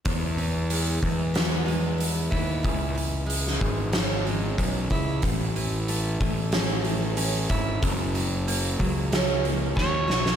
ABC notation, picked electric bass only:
X:1
M:4/4
L:1/8
Q:1/4=93
K:E
V:1 name="Picked electric bass" clef=bass
E,,3 E,,4 D,, | C,,3 G,,,3 B,,, C,, | A,,,3 A,,,4 G,,, | F,,,3 C,,3 D,, B,,, |]